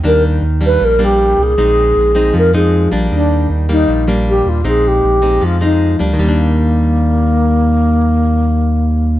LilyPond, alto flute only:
\new Staff \with { instrumentName = "Alto flute" } { \time 4/4 \key ees \major \tempo 4 = 156 bes'8 r4 ces''8 bes'8 g'4 aes'8~ | aes'2 bes'8 aes'4 r8 | d'4 r8 ees'4 r8 g'8 f'8 | aes'8 g'4. f'8 ees'4 r8 |
bes1~ | bes1 | }